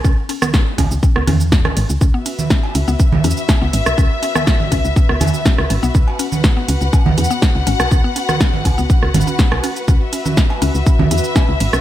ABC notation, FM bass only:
X:1
M:4/4
L:1/16
Q:1/4=122
K:C#m
V:1 name="FM bass" clef=bass
C,, z4 z C,, C,, z C,, E,,3 C,, G,,, C,, | C,, z4 z C,, C,, z C,, E,, z2 C,, G,,, B,,, | C,, z4 z C,, C,, z C,, E,, z2 C,, G,,, B,,, | C,, z4 z C,, C,, z C,, E,, z2 C,, G,,, B,,, |
C,, z4 z C,, C,, z C,, G,,, z2 B,,, z2 | C,, z4 z C,, C,, z C,, E,, z2 C,, G,,, B,,, |]